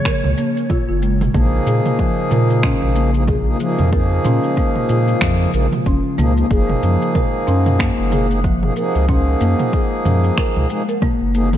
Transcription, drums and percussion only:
0.05 finger snap, kick, shaker
0.24 mid tom
0.38 shaker
0.57 shaker
0.70 kick, mid tom, shaker
1.02 shaker
1.21 mid tom, shaker
1.34 kick, mid tom, shaker
1.67 shaker
1.86 mid tom, shaker
1.99 kick, shaker
2.31 mid tom, shaker
2.50 shaker
2.63 finger snap, kick, shaker
2.82 mid tom
2.95 shaker
3.14 shaker
3.28 kick, mid tom, shaker
3.60 shaker
3.79 mid tom, shaker
3.92 kick, shaker
4.25 mid tom, shaker
4.44 shaker
4.57 kick, shaker
4.76 mid tom
4.89 shaker
5.08 shaker
5.21 finger snap, kick, mid tom, shaker
5.54 shaker
5.73 mid tom, shaker
5.86 kick, shaker
6.18 mid tom, shaker
6.37 shaker
6.51 kick, shaker
6.70 mid tom
6.83 shaker
7.02 shaker
7.15 kick, mid tom, shaker
7.48 shaker
7.66 mid tom, shaker
7.80 finger snap, kick, shaker
8.12 mid tom, shaker
8.31 shaker
8.44 kick, shaker
8.63 mid tom
8.76 shaker
8.95 shaker
9.08 kick, mid tom, shaker
9.41 shaker
9.59 mid tom, shaker
9.73 kick, shaker
10.05 mid tom, shaker
10.24 shaker
10.38 finger snap, kick, shaker
10.56 mid tom
10.70 shaker
10.89 shaker
11.02 kick, mid tom, shaker
11.35 shaker
11.53 mid tom, shaker

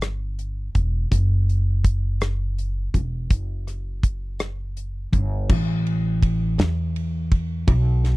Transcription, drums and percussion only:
0.01 cross-stick, closed hi-hat
0.39 closed hi-hat
0.75 kick, closed hi-hat
1.12 kick, closed hi-hat
1.49 closed hi-hat
1.85 kick, closed hi-hat
2.21 cross-stick, closed hi-hat
2.58 closed hi-hat
2.94 kick, closed hi-hat
3.30 kick, closed hi-hat
3.67 cross-stick, closed hi-hat
4.03 kick, closed hi-hat
4.39 cross-stick, closed hi-hat
4.77 closed hi-hat
5.13 kick, closed hi-hat
5.50 kick, crash
5.87 ride
6.23 kick, ride
6.59 snare, ride
6.96 ride
7.32 kick, ride
7.68 kick, ride
8.04 snare, ride

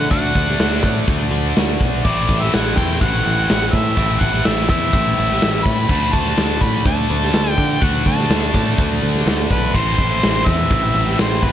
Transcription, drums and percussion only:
0.11 kick, open hi-hat
0.35 kick, open hi-hat
0.48 snare
0.59 snare, open hi-hat
0.84 kick, open hi-hat
1.08 kick, open hi-hat
1.32 open hi-hat
1.56 snare, open hi-hat
1.81 kick, open hi-hat
2.05 kick, crash
2.29 kick, open hi-hat
2.42 snare
2.53 snare, open hi-hat
2.77 kick, snare, open hi-hat
3.01 kick, open hi-hat
3.25 open hi-hat
3.49 snare, open hi-hat
3.73 kick, open hi-hat
3.97 kick, open hi-hat
4.21 kick, open hi-hat
4.34 snare
4.45 snare, open hi-hat
4.69 kick, open hi-hat
4.93 kick, open hi-hat
5.18 open hi-hat
5.31 snare
5.42 snare, open hi-hat
5.66 kick, open hi-hat
5.89 kick, crash
6.13 kick, open hi-hat
6.26 snare
6.37 snare, open hi-hat
6.61 kick, snare, open hi-hat
6.85 kick, open hi-hat
7.10 open hi-hat
7.23 snare
7.33 snare, open hi-hat
7.58 kick, open hi-hat
7.82 kick, open hi-hat
8.06 kick, open hi-hat
8.19 snare
8.30 snare, open hi-hat
8.54 kick, open hi-hat
8.78 kick, open hi-hat
9.03 open hi-hat
9.16 snare
9.27 snare, open hi-hat
9.51 kick, open hi-hat
9.74 kick, crash
9.99 kick, open hi-hat
10.23 snare, open hi-hat
10.46 kick, snare, open hi-hat
10.71 kick, open hi-hat
10.94 open hi-hat
11.08 snare
11.19 snare, open hi-hat
11.43 kick, open hi-hat

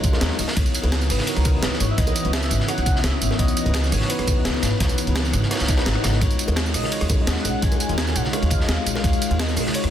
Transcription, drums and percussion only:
0.04 kick, closed hi-hat, ride, tambourine, high conga
0.13 snare, high bongo
0.21 snare, closed hi-hat, ride
0.31 snare
0.39 closed hi-hat, open hi-hat, tambourine
0.48 snare, ride, high bongo
0.56 kick, closed hi-hat, ride, high bongo
0.66 closed hi-hat, tambourine
0.74 closed hi-hat, ride, tambourine
0.83 closed hi-hat, high bongo
0.92 snare, closed hi-hat, ride
1.01 snare, tambourine
1.10 cross-stick, closed hi-hat, open hi-hat, tambourine
1.18 snare, high bongo, high conga
1.27 closed hi-hat, ride
1.36 cross-stick, closed hi-hat
1.45 kick, closed hi-hat, ride, tambourine, high bongo, high conga
1.63 snare, closed hi-hat, ride
1.73 snare
1.80 closed hi-hat, ride, tambourine, high bongo
1.98 kick, closed hi-hat, ride
2.07 closed hi-hat, tambourine, high bongo
2.16 closed hi-hat, ride, tambourine
2.25 closed hi-hat
2.33 snare, closed hi-hat, ride
2.42 snare, tambourine, high bongo
2.50 closed hi-hat, ride, tambourine
2.59 snare, high conga
2.68 cross-stick, closed hi-hat, ride, high bongo
2.78 closed hi-hat, ride
2.86 kick, closed hi-hat, ride, tambourine, high conga
2.96 snare
3.03 snare, closed hi-hat, ride, high bongo
3.22 closed hi-hat, ride, tambourine
3.31 snare, high bongo
3.39 kick, closed hi-hat, ride
3.48 closed hi-hat, tambourine
3.57 closed hi-hat, ride, tambourine
3.65 closed hi-hat, high bongo
3.74 snare, closed hi-hat, ride
3.84 snare, tambourine
3.92 cross-stick, closed hi-hat, open hi-hat, tambourine, high bongo
4.00 snare, high conga
4.10 closed hi-hat, ride
4.19 cross-stick, closed hi-hat
4.27 kick, closed hi-hat, ride, tambourine, high bongo, high conga
4.45 snare, closed hi-hat, ride
4.54 snare, high bongo
4.62 snare, closed hi-hat, ride, tambourine
4.80 kick, snare, closed hi-hat, ride
4.89 closed hi-hat, tambourine, high bongo
4.98 closed hi-hat, ride, tambourine
5.07 closed hi-hat
5.15 snare, closed hi-hat, ride, high bongo
5.24 snare, tambourine
5.33 cross-stick, closed hi-hat, ride, tambourine, high conga
5.42 snare, high conga
5.51 cross-stick, snare, closed hi-hat, ride, high bongo
5.55 snare, ride
5.60 snare, closed hi-hat, ride, tambourine
5.64 snare, ride, high conga
5.68 kick, snare, closed hi-hat, ride, tambourine
5.77 snare, ride, high bongo
5.86 snare, closed hi-hat, ride
5.95 cross-stick
6.04 cross-stick, snare, closed hi-hat, ride, tambourine, high conga
6.13 snare, high bongo
6.21 kick, closed hi-hat, ride, high bongo
6.31 closed hi-hat, tambourine
6.39 closed hi-hat, ride, tambourine
6.48 closed hi-hat, high bongo
6.56 snare, closed hi-hat, ride
6.66 snare, tambourine
6.74 cross-stick, closed hi-hat, open hi-hat, tambourine
6.83 snare, high bongo, high conga
6.92 closed hi-hat, ride
7.01 cross-stick, closed hi-hat
7.09 kick, closed hi-hat, ride, tambourine, high bongo, high conga
7.27 snare, closed hi-hat, ride
7.36 snare
7.45 closed hi-hat, ride, tambourine, high bongo
7.62 kick, closed hi-hat, ride
7.72 closed hi-hat, tambourine, high bongo
7.80 closed hi-hat, ride, tambourine
7.89 closed hi-hat
7.98 snare, closed hi-hat, ride
8.07 snare, tambourine, high bongo
8.16 closed hi-hat, ride, tambourine
8.25 snare, high conga
8.33 cross-stick, closed hi-hat, ride, high bongo
8.42 closed hi-hat, ride
8.50 kick, closed hi-hat, ride, tambourine, high conga
8.61 snare
8.68 snare, closed hi-hat, ride, high bongo
8.86 closed hi-hat, ride, tambourine
8.95 snare, high bongo
9.04 kick, closed hi-hat, ride
9.13 closed hi-hat, tambourine
9.22 closed hi-hat, ride, tambourine
9.31 closed hi-hat, high bongo
9.39 snare, closed hi-hat, ride
9.49 snare, tambourine
9.56 cross-stick, closed hi-hat, open hi-hat, tambourine, high bongo
9.66 snare, high conga
9.74 closed hi-hat, ride
9.84 cross-stick, closed hi-hat

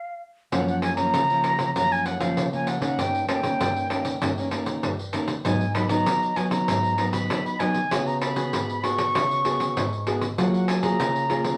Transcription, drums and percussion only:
0.52 pandeiro
0.68 pandeiro
0.82 pandeiro
0.97 pandeiro
1.14 pandeiro
1.30 pandeiro
1.44 pandeiro
1.59 pandeiro
1.76 pandeiro
1.92 pandeiro
2.06 pandeiro
2.20 pandeiro
2.37 pandeiro
2.53 pandeiro
2.67 pandeiro
2.82 pandeiro
2.99 pandeiro
3.15 pandeiro
3.29 pandeiro
3.43 pandeiro
3.60 pandeiro
3.76 pandeiro
3.90 pandeiro
4.05 pandeiro
4.22 pandeiro
4.38 pandeiro
4.51 pandeiro
4.66 pandeiro
4.83 pandeiro
4.99 pandeiro
5.13 pandeiro
5.28 pandeiro
5.45 pandeiro
5.61 pandeiro
5.75 pandeiro
5.89 pandeiro
6.06 pandeiro
6.22 pandeiro
6.36 pandeiro
6.51 pandeiro
6.68 pandeiro
6.84 pandeiro
6.98 pandeiro
7.13 pandeiro
7.30 pandeiro
7.46 pandeiro
7.60 pandeiro
7.74 pandeiro
7.91 pandeiro
8.07 pandeiro
8.21 pandeiro
8.36 pandeiro
8.53 pandeiro
8.70 pandeiro
8.83 pandeiro
8.98 pandeiro
9.15 pandeiro
9.31 pandeiro
9.45 pandeiro
9.60 pandeiro
9.77 pandeiro
9.93 pandeiro
10.07 pandeiro
10.21 pandeiro
10.38 pandeiro
10.54 pandeiro
10.68 pandeiro
10.83 pandeiro
11.00 pandeiro
11.16 pandeiro
11.30 pandeiro
11.44 pandeiro

